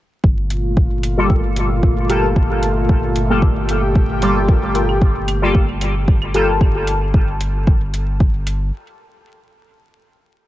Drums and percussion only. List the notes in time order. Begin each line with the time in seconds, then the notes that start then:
0.24 kick
0.50 closed hi-hat
0.77 kick
1.03 closed hi-hat
1.30 kick
1.56 closed hi-hat
1.83 kick
2.09 closed hi-hat
2.36 kick
2.63 closed hi-hat
2.89 kick
3.16 closed hi-hat
3.42 kick
3.69 closed hi-hat
3.95 kick
4.22 closed hi-hat
4.48 kick
4.75 closed hi-hat
4.89 claves
5.02 kick
5.28 closed hi-hat, claves
5.55 kick
5.81 closed hi-hat, claves
6.08 kick
6.22 claves
6.34 closed hi-hat
6.61 kick
6.87 closed hi-hat
7.14 kick
7.41 closed hi-hat
7.67 kick
7.94 closed hi-hat
8.20 kick
8.47 closed hi-hat